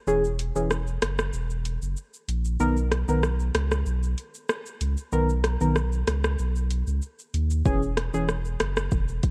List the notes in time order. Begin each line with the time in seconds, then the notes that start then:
0.07 E1 E3 C#4 G#4, shaker
0.24 shaker
0.39 closed hi-hat, shaker
0.55 E1 E3 C#4 G#4, shaker
0.71 cross-stick, shaker
0.87 shaker
1.02 F#1, cross-stick, closed hi-hat, shaker
1.19 cross-stick, shaker
1.33 E1, shaker
1.50 shaker
1.65 closed hi-hat, shaker
1.82 F#1, shaker
1.97 shaker
2.14 shaker
2.28 A#1, closed hi-hat, shaker
2.45 shaker
2.60 B1 D#3 B3 A#4, shaker
2.77 shaker
2.92 cross-stick, closed hi-hat, shaker
3.08 B1 D#3 B3 A#4, shaker
3.23 cross-stick, shaker
3.40 shaker
3.55 C#2, cross-stick, closed hi-hat, shaker
3.71 cross-stick, shaker
3.86 B1, shaker
4.03 shaker
4.18 closed hi-hat, shaker
4.34 shaker
4.49 cross-stick, shaker
4.66 shaker
4.81 C#2, closed hi-hat, shaker
4.97 shaker
5.12 B1 D#3 B3 A#4, shaker
5.29 shaker
5.44 cross-stick, closed hi-hat, shaker
5.61 B1 D#3 B3 A#4, shaker
5.76 cross-stick, shaker
5.92 shaker
6.07 C#2, cross-stick, closed hi-hat, shaker
6.24 cross-stick, shaker
6.39 B1, shaker
6.56 shaker
6.70 closed hi-hat, shaker
6.87 C#2, shaker
7.02 shaker
7.19 shaker
7.34 D#2, closed hi-hat, shaker
7.50 shaker
7.65 E1 E3 C#4 G#4, kick, shaker
7.82 shaker
7.97 cross-stick, closed hi-hat, shaker
8.13 E1 E3 C#4 G#4, shaker
8.29 cross-stick, shaker
8.45 shaker
8.60 F#1, cross-stick, closed hi-hat, shaker
8.77 cross-stick, shaker
8.91 E1, kick, shaker
9.08 shaker
9.23 kick, closed hi-hat, shaker